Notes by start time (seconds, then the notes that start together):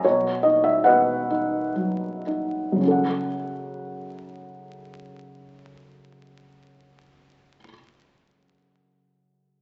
0.04 B2 F#4 C#5
0.43 D#4 D#5
0.64 E5
0.84 B2 B4 D#5 F#5
1.30 D#4
1.76 F#3
2.27 D#4
2.72 F#2 C#3
2.81 C#4 F#4
2.88 A4 F#5